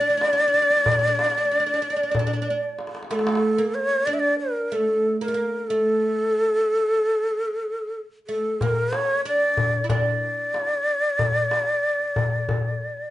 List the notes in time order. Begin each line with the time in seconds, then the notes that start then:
Already playing: D5
0.01 D4
0.05 darbuka ka
0.10 D4
0.17 D4
0.21 D4, darbuka tek
0.33 D4
0.39 D4
0.48 D4
0.54 D4, darbuka ka
0.62 D4
0.70 D4
0.77 D4
0.84 D4, darbuka dum
0.91 D4
0.99 D4, darbuka ka
1.07 D4
1.15 D4
1.19 darbuka tek
1.24 D4
1.30 D4
1.38 D4
1.45 D4
1.51 D4
1.60 D4
1.66 D4, darbuka ka
1.74 D4
1.82 D4
1.90 D4
1.96 D4
2.03 D4
2.11 D4, darbuka dum
2.19 D4
2.27 D4, darbuka ka
2.33 D4
2.42 D4
2.50 D4
2.79 darbuka tek
2.87 darbuka ka
2.95 darbuka tek
3.03 darbuka ka
3.10 A3 A#4, darbuka tek
3.15 A4
3.19 darbuka ka
3.27 darbuka tek
3.35 darbuka ka
3.58 A#3
3.75 C#5
4.06 D4 D5
4.14 E5
4.20 D5
4.40 A#4
4.71 A3 A#4
4.76 A4
5.21 A#3 A#4
5.28 A3
5.34 A#3
5.67 A3 A4
8.27 A3 A4
8.61 A#3 A#4, darbuka dum
8.93 C#5, darbuka tek
9.09 darbuka ka
9.25 D4 D5
9.41 darbuka ka
9.57 darbuka dum
9.84 E4
9.89 D4 D5, darbuka dum
10.22 darbuka ka
10.54 darbuka tek
11.19 darbuka dum
11.35 darbuka ka
11.51 darbuka tek
12.00 darbuka ka
12.16 darbuka dum
12.49 darbuka dum
12.65 darbuka ka
12.81 darbuka ka
12.97 darbuka ka